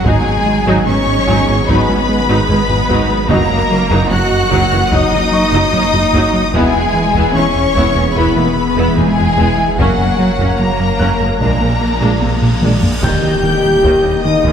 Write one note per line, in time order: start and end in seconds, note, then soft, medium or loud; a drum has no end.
0.00 3.29 F#3 medium
0.00 0.42 G#4 medium
0.00 0.42 G#5 medium
0.04 3.31 G#1 medium
0.04 0.14 G#1 loud
0.04 0.18 G#2 loud
0.04 0.35 F#3 medium
0.04 0.25 F#3 loud
0.04 0.86 G#3 loud
0.04 3.29 B3 medium
0.04 0.35 D#4 loud
0.04 0.25 D#4 medium
0.04 3.29 G#4 loud
0.04 0.84 G#4 loud
0.04 6.54 D#5 medium
0.04 0.86 G#5 loud
0.04 taiko loud
0.26 0.38 G#2 medium
0.46 0.54 G#1 medium
0.46 0.55 F#3 medium
0.46 0.58 G#3 medium
0.46 0.55 D#4 medium
0.66 0.74 G#1 loud
0.66 0.79 G#2 loud
0.66 0.86 F#3 loud
0.66 0.86 D#4 loud
0.66 taiko medium
0.86 0.94 G#1 medium
0.86 0.95 E3 medium
0.86 0.99 G#3 medium
0.86 1.66 C#4 loud
0.86 0.96 C#4 medium
0.86 1.66 C#5 loud
0.86 1.66 C#6 loud
1.07 1.19 G#2 medium
1.27 1.35 G#1 loud
1.27 1.40 G#2 loud
1.27 1.46 F#3 loud
1.27 1.46 D#4 loud
1.27 3.67 G#4 medium
1.27 3.67 G#5 medium
1.27 taiko medium
1.47 1.55 G#1 medium
1.47 1.60 G#2 medium
1.47 1.56 E3 medium
1.47 1.57 C#4 medium
1.66 1.75 G#1 loud
1.66 1.80 G#2 loud
1.66 1.97 F#3 medium
1.66 1.87 F#3 loud
1.66 3.26 B3 medium
1.66 1.97 D#4 medium
1.66 1.87 D#4 loud
1.66 3.29 B4 loud
1.66 3.30 B5 loud
1.66 taiko medium
1.88 1.96 G#1 medium
1.88 1.97 E3 medium
1.88 2.01 G#3 medium
1.88 1.97 C#4 medium
2.09 2.21 G#3 medium
2.28 2.36 G#1 loud
2.28 2.41 G#2 loud
2.28 2.47 F#3 medium
2.28 2.47 D#4 loud
2.48 2.57 G#1 medium
2.48 2.57 E3 medium
2.48 2.61 G#3 medium
2.48 2.57 C#4 medium
2.48 taiko low medium
2.69 2.77 G#1 medium
2.69 2.81 G#2 medium
2.69 2.77 F#3 medium
2.69 2.77 D#4 medium
2.69 taiko low medium
2.89 2.97 G#1 loud
2.89 3.02 G#2 loud
2.89 3.08 F#3 loud
2.89 3.08 D#4 loud
2.89 taiko loud
3.10 3.22 G#3 medium
3.29 6.55 F#1 medium
3.29 3.38 F#1 loud
3.29 3.42 F#2 loud
3.29 3.49 F#3 loud
3.29 6.50 F#3 medium
3.29 3.60 F#3 medium
3.29 4.09 A#3 loud
3.29 6.54 A#3 loud
3.29 3.48 D#4 loud
3.29 3.60 D#4 loud
3.29 6.54 F#4 loud
3.29 4.11 A#4 loud
3.29 4.09 A#5 loud
3.29 taiko loud
3.51 3.63 F#2 medium
3.70 3.79 F#1 medium
3.70 3.78 F#3 medium
3.70 3.83 F#3 medium
3.70 3.78 D#4 medium
3.90 3.99 F#1 loud
3.90 4.03 F#2 loud
3.90 4.09 F#3 loud
3.90 4.10 D#4 loud
3.90 taiko medium
4.11 4.20 F#1 medium
4.11 4.19 E3 medium
4.11 4.23 F#3 medium
4.11 4.19 C#4 medium
4.11 4.92 F#4 loud
4.11 4.90 F#5 loud
4.11 4.90 F#6 loud
4.32 4.44 F#2 medium
4.51 4.60 F#1 loud
4.51 4.64 F#2 loud
4.51 4.70 F#3 loud
4.51 4.70 D#4 medium
4.51 taiko medium
4.72 4.80 F#1 medium
4.72 4.84 F#2 medium
4.72 4.80 E3 medium
4.72 4.80 C#4 medium
4.91 5.00 F#1 loud
4.91 5.04 F#2 loud
4.91 5.11 F#3 medium
4.91 5.22 F#3 medium
4.91 6.54 D#4 loud
4.91 5.22 D#4 loud
4.91 5.11 D#4 medium
4.91 6.54 D#5 loud
4.91 6.54 D#6 loud
4.91 taiko loud
5.12 5.20 F#1 medium
5.12 5.21 E3 medium
5.12 5.24 F#3 medium
5.12 5.21 C#4 medium
5.32 5.44 F#3 medium
5.32 7.72 C#6 medium
5.52 5.61 F#1 loud
5.52 5.65 F#2 loud
5.52 5.72 F#3 loud
5.52 5.72 D#4 loud
5.73 5.81 F#1 medium
5.73 5.82 E3 medium
5.73 5.85 F#3 medium
5.73 5.81 C#4 loud
5.73 taiko low medium
5.93 6.01 F#1 medium
5.93 6.05 F#2 medium
5.93 6.02 F#3 medium
5.93 6.02 D#4 medium
5.93 taiko low medium
6.13 6.22 F#1 loud
6.13 6.26 F#2 loud
6.13 6.33 F#3 loud
6.13 6.33 D#4 loud
6.13 taiko medium
6.33 6.46 F#3 medium
6.53 9.80 E1 loud
6.53 6.62 E1 loud
6.53 6.66 E2 loud
6.53 9.79 E3 medium
6.53 7.33 G#3 loud
6.53 6.73 B3 loud
6.53 6.84 B3 loud
6.53 9.79 B3 loud
6.53 6.73 E4 loud
6.53 6.84 E4 medium
6.53 7.33 G#4 loud
6.53 9.79 G#4 medium
6.53 9.78 E5 medium
6.53 7.35 G#5 loud
6.53 taiko loud
6.74 6.86 E2 medium
6.94 7.03 E1 medium
6.94 7.06 E3 medium
6.94 7.03 B3 medium
6.94 7.04 E4 medium
7.15 7.23 E1 loud
7.15 7.27 E2 loud
7.15 7.34 B3 loud
7.15 7.34 E4 loud
7.15 taiko medium
7.34 7.43 E1 medium
7.34 7.47 E3 medium
7.34 7.43 A#3 medium
7.34 8.16 C#4 loud
7.34 7.43 D#4 medium
7.34 8.16 C#5 loud
7.34 8.15 C#6 loud
7.55 7.67 E2 medium
7.75 7.83 E1 loud
7.75 7.87 E2 loud
7.75 7.95 B3 medium
7.75 7.95 E4 loud
7.75 taiko medium
7.96 8.04 E1 medium
7.96 8.08 E2 medium
7.96 8.05 A#3 medium
7.96 8.05 D#4 medium
8.16 8.24 E1 loud
8.16 8.28 E2 loud
8.16 8.96 B3 medium
8.16 8.35 B3 loud
8.16 8.46 B3 medium
8.16 8.46 E4 medium
8.16 8.35 E4 loud
8.16 8.97 B4 medium
8.16 8.97 B5 loud
8.16 taiko medium
8.36 8.44 E1 medium
8.36 8.48 E3 medium
8.36 8.45 A#3 medium
8.36 8.45 D#4 medium
8.56 8.69 E3 medium
8.77 8.85 E1 loud
8.77 8.89 E2 loud
8.77 8.96 B3 loud
8.77 8.96 E4 loud
8.97 9.05 E1 medium
8.97 9.09 E3 medium
8.97 9.78 G#3 loud
8.97 9.06 A#3 medium
8.97 9.06 D#4 medium
8.97 9.78 G#4 loud
8.97 9.79 G#5 loud
8.97 taiko low medium
9.17 9.25 E1 medium
9.17 9.29 E2 medium
9.17 9.26 B3 medium
9.17 9.26 E4 medium
9.17 taiko low medium
9.37 9.45 E1 loud
9.37 9.49 E2 loud
9.37 9.57 B3 loud
9.37 9.57 E4 medium
9.37 taiko loud
9.57 9.70 E3 medium
9.78 9.86 F#1 medium
9.78 11.42 F#1 medium
9.78 9.90 F#2 loud
9.78 10.58 F#3 medium
9.78 11.41 F#3 loud
9.78 10.08 A#3 medium
9.78 13.03 A#3 medium
9.78 9.98 A#3 medium
9.78 10.08 C#4 loud
9.78 9.98 C#4 loud
9.78 10.58 F#4 medium
9.78 11.41 A#4 medium
9.78 11.41 C#5 medium
9.78 10.58 F#5 loud
9.78 taiko loud
9.78 cymbal swell medium
9.98 10.11 F#2 medium
10.18 10.26 F#1 medium
10.18 10.31 F#3 medium
10.18 10.27 A#3 medium
10.18 10.27 C#4 medium
10.39 10.47 F#1 loud
10.39 10.51 F#2 loud
10.39 10.58 A#3 medium
10.39 10.58 C#4 medium
10.39 taiko medium
10.59 10.67 F#1 medium
10.59 10.72 F#3 medium
10.59 10.68 G#3 medium
10.59 11.39 A#3 medium
10.59 10.68 B3 medium
10.59 11.39 A#4 loud
10.59 11.39 A#5 loud
10.80 10.92 F#2 medium
10.80 taiko rim soft
10.99 11.08 F#1 medium
10.99 11.12 F#2 loud
10.99 11.19 A#3 medium
10.99 11.19 C#4 medium
10.99 12.98 F#6 medium
10.99 taiko medium
11.20 11.29 F#1 medium
11.20 11.32 F#2 medium
11.20 11.29 G#3 medium
11.20 11.29 B3 medium
11.40 11.49 A#1 medium
11.40 13.03 A#1 medium
11.40 11.53 A#2 loud
11.40 13.03 F3 loud
11.40 11.70 G#3 medium
11.40 11.60 G#3 medium
11.40 12.60 A#3 medium
11.40 11.70 D4 medium
11.40 11.60 D4 medium
11.40 13.03 G#4 medium
11.40 12.60 A#4 loud
11.40 13.03 D5 loud
11.40 12.60 A#5 loud
11.40 taiko medium
11.61 11.69 A#1 medium
11.61 11.70 G3 medium
11.61 11.73 A#3 medium
11.61 11.70 C4 medium
11.81 11.93 A#3 medium
12.01 12.09 A#1 loud
12.01 12.13 A#2 loud
12.01 12.20 G#3 medium
12.01 12.20 D4 medium
12.22 12.30 A#1 medium
12.22 12.30 G3 medium
12.22 12.34 A#3 medium
12.22 12.30 C4 medium
12.22 taiko high medium
12.42 12.50 A#1 medium
12.42 12.54 A#2 medium
12.42 12.51 G#3 medium
12.42 12.51 D4 medium
12.42 taiko low-mid medium
12.62 12.71 A#1 medium
12.62 12.75 A#2 loud
12.62 12.82 G#3 medium
12.62 12.82 D4 loud
12.62 taiko mid loud
12.83 12.95 A#3 medium
12.83 taiko low loud
13.03 14.53 D#1 medium
13.03 13.15 D#2 loud
13.03 13.11 D#2 loud
13.03 13.22 D#3 loud
13.03 14.53 D#3 medium
13.03 14.53 A#3 loud
13.03 14.53 D#4 medium
13.03 14.21 G4 loud
13.03 13.40 D#5 medium
13.03 14.53 D#5 loud
13.03 14.53 G5 medium
13.03 14.21 G6 loud
13.03 14.53 G6 medium
13.03 taiko loud
13.03 impact medium
13.23 13.35 D#3 medium
13.43 13.51 D#2 medium
13.43 13.56 D#3 medium
13.43 13.52 A#3 medium
13.43 13.83 G5 medium
13.64 13.72 D#2 medium
13.64 13.76 D#3 medium
13.64 13.73 G3 medium
13.83 13.96 D#2 loud
13.83 13.92 D#2 loud
13.83 13.92 D#2 medium
13.83 14.03 D#3 loud
13.83 14.53 D#5 loud
13.83 taiko medium
14.04 14.12 D#2 medium
14.04 14.16 D#2 medium
14.04 14.13 G3 medium
14.04 taiko rim soft
14.24 14.32 D#2 medium
14.24 14.33 D#2 medium
14.24 14.37 D#3 medium
14.24 14.33 A#3 medium
14.24 14.53 D#4 loud
14.24 14.53 D#6 medium
14.44 14.53 D#2 loud
14.44 14.53 D#3 medium
14.44 taiko medium